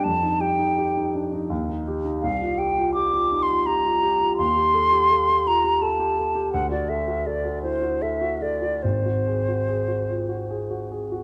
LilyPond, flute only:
\new Staff \with { instrumentName = "Flute" } { \time 3/4 \key ees \major \tempo 4 = 82 a''8 g''4 r4. | f''8 g''8 \tuplet 3/2 { d'''4 c'''8 } bes''4 | c'''4. bes''8 a''4 | fis''16 d''16 e''8 d''8 c''8 e''8 d''8 |
c''2~ c''8 r8 | }